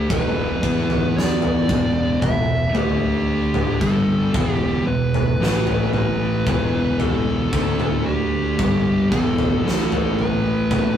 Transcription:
Already playing: lead electric guitar G4
0.09 fingered electric bass E1, distorted electric guitar E2 B2 E3, lead electric guitar B4, kick, floor tom
0.63 fingered electric bass E2, distorted electric guitar E3 B3 E4, kick
0.90 floor tom
1.16 lead electric guitar D5, snare
1.42 floor tom
1.69 fingered electric bass E1, distorted electric guitar E2 B2 E3, kick, mid tom
2.21 fingered electric bass E1, distorted electric guitar E2 B2, lead electric guitar E5, kick, floor tom, mid tom
2.73 fingered electric bass D2, distorted electric guitar D3 A3 D4, lead electric guitar G4, floor tom
3.54 floor tom, mid tom
3.81 fingered electric bass G1, distorted electric guitar G2 D3 G3, lead electric guitar A4, kick
4.33 fingered electric bass E1, distorted electric guitar E2 B2 E3, kick, floor tom
4.53 lead electric guitar G4
4.86 fingered electric bass E1, distorted electric guitar E2 B2, lead electric guitar B4
5.14 floor tom
5.39 fingered electric bass A1, distorted electric guitar A2 E3 A3, snare
5.67 floor tom
5.93 lead electric guitar B4, mid tom
6.46 fingered electric bass E1, distorted electric guitar E2 B2 E3, kick, floor tom, mid tom
7.00 lead electric guitar A4, floor tom
7.53 fingered electric bass D2, distorted electric guitar D3 A3 D4, kick
7.80 floor tom, mid tom
8.06 lead electric guitar G4
8.59 fingered electric bass G1, distorted electric guitar G2 D3 G3, kick, floor tom
9.11 fingered electric bass E1, distorted electric guitar E2 B2 E3, lead electric guitar A4, kick
9.38 floor tom
9.64 fingered electric bass A1, distorted electric guitar A2 E3 A3, snare
9.92 floor tom
10.16 lead electric guitar B4, mid tom
10.71 kick, floor tom, mid tom

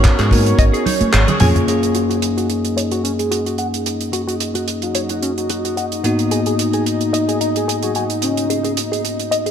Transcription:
Already playing: tine electric piano B3 D#4 F#4 A#4, analog synth pad C#4 C#5
0.04 kick, clap, closed hi-hat
0.19 fingered electric bass G#2, clean electric guitar G#4, clap, closed hi-hat
0.31 tine electric piano B3 D#4 F#4 A#4, kick, open hi-hat, high conga
0.46 closed hi-hat
0.59 fingered electric bass G#1, clean electric guitar D#5, kick, closed hi-hat
0.74 clean electric guitar G#4, closed hi-hat
0.86 clean electric guitar D#4, open hi-hat, low conga
1.01 muted fingered electric bass stroke, closed hi-hat, high conga
1.13 fingered electric bass G#1, clean electric guitar G#4, clap, closed hi-hat
1.28 clean electric guitar G#4, closed hi-hat, high tom, low conga
1.40 fingered electric bass F2, tine electric piano A#3 C#4 F4 G#4, clean electric guitar G#5, open hi-hat, mid tom
1.56 closed hi-hat, mid tom
1.67 tine electric piano F#2 A#3 C#4 G#4, analog synth pad D#4 D#5, closed hi-hat
1.83 closed hi-hat
1.95 clean electric guitar F#4, closed hi-hat
2.09 clean electric guitar F#4, closed hi-hat
2.22 closed hi-hat
2.37 clean electric guitar F#4, closed hi-hat
2.50 closed hi-hat
2.65 closed hi-hat
2.77 clean electric guitar C#5, closed hi-hat
2.91 clean electric guitar F#4, closed hi-hat
3.04 clean electric guitar C#4, closed hi-hat
3.19 soft synth lead G#4, closed hi-hat
3.31 clean electric guitar F#4, closed hi-hat
3.46 clean electric guitar F#4, closed hi-hat
3.58 clean electric guitar F#5, closed hi-hat
3.74 closed hi-hat
3.86 closed hi-hat
4.01 closed hi-hat
4.13 clean electric guitar F#4, closed hi-hat
4.27 clean electric guitar F#4, closed hi-hat
4.40 closed hi-hat
4.55 clean electric guitar F#4, closed hi-hat
4.68 closed hi-hat
4.82 soft synth lead F#4, closed hi-hat
4.95 clean electric guitar C#5, closed hi-hat
5.09 clean electric guitar F#4, closed hi-hat
5.22 clean electric guitar C#4, closed hi-hat
5.37 soft synth lead F#4, closed hi-hat
5.50 clean electric guitar F#4, closed hi-hat
5.65 clean electric guitar F#4, closed hi-hat
5.77 clean electric guitar F#5, closed hi-hat
5.92 closed hi-hat
6.04 tine electric piano G#2 A#3 B3 D#4 F#4, closed hi-hat
6.19 closed hi-hat
6.31 clean electric guitar G#4, closed hi-hat
6.46 clean electric guitar G#4, closed hi-hat
6.59 closed hi-hat
6.73 clean electric guitar G#4, closed hi-hat
6.86 closed hi-hat
7.01 closed hi-hat
7.13 clean electric guitar D#5, closed hi-hat
7.29 clean electric guitar G#4, closed hi-hat
7.41 clean electric guitar D#4, closed hi-hat
7.56 soft synth lead G#4, closed hi-hat
7.68 clean electric guitar G#4, closed hi-hat
7.82 soft synth lead F#4, clean electric guitar G#4, closed hi-hat
7.95 soft synth lead F#4, clean electric guitar G#5, closed hi-hat
8.10 closed hi-hat
8.22 soft synth lead C#4, closed hi-hat
8.37 closed hi-hat
8.50 clean electric guitar G#4, closed hi-hat
8.64 clean electric guitar G#4, closed hi-hat
8.77 closed hi-hat
8.92 clean electric guitar G#4, closed hi-hat
9.05 closed hi-hat
9.20 closed hi-hat
9.31 clean electric guitar D#5, closed hi-hat
9.46 clean electric guitar G#4, closed hi-hat

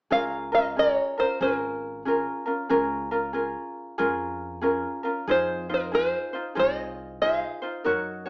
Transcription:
0.10 upright bass C#2, ukulele C#4 F4 G#4 A#4, five-string banjo F5
0.52 ukulele C#4 F4 A#4, five-string banjo D#5
0.76 ukulele C#4 F4 G#4 A#4, five-string banjo C#5
1.18 ukulele C#4 F4 A#4, five-string banjo C5
1.41 upright bass G#1, ukulele C#4 F4 G#4 A#4, five-string banjo A#4
2.05 ukulele C#4 F4 G#4 A#4
2.46 ukulele C#4 F4 A#4
2.69 upright bass C#2, ukulele C#4 F4 G#4 A#4
3.11 ukulele C#4 F4 A#4
3.33 ukulele C#4 F4 G#4 A#4
3.98 upright bass F2, ukulele C#4 F4 G#4 A#4
4.61 ukulele C#4 F4 G#4 A#4
5.03 ukulele C#4 F4 A#4
5.28 upright bass F2, ukulele D#4 F4 G#4 C5, five-string banjo C5
5.69 ukulele D#4 F4 C5
5.74 five-string banjo A#4
5.92 ukulele D#4 F4 G#4 C5, five-string banjo C5
6.33 ukulele D#4 F4 C5
6.55 upright bass C2, ukulele D#4 F4 G#4 C5
6.59 five-string banjo D#5
7.21 ukulele D#4 F4 G#4 C5, five-string banjo F5
7.62 ukulele D#4 F4 C5
7.84 upright bass F#2, ukulele D#4 F#4 A#4 C#5
8.26 ukulele C#5

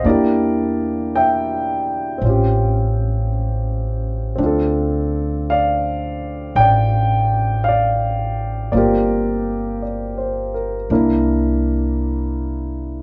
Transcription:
0.03 upright bass E2, grand piano A#3 D4 E4 D5
0.08 grand piano G4 A#4
1.15 grand piano E5 G5
2.18 upright bass A1, grand piano C4
2.22 grand piano C#4 F4
2.29 grand piano G4
4.36 upright bass D2, grand piano C4 D4
4.43 grand piano F4 A4
5.50 grand piano D5 F5
6.55 upright bass A1, grand piano G5
6.60 grand piano D5
7.64 grand piano F5
7.68 grand piano D5
8.72 upright bass G1, grand piano A#3 C4 F4 D5
8.77 grand piano G4 A#4
9.82 grand piano D5
10.18 grand piano C5
10.54 grand piano A#4
10.90 upright bass C2, grand piano A#3 D4 E4 A#4

